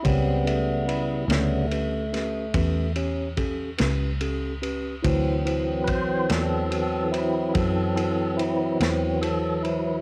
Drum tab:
RD |xxxxxxxxxxxx|xxxxxxxxxxxx|
SD |---o-o---o--|---o-----o--|
BD |o-----o-o---|o-o---o-----|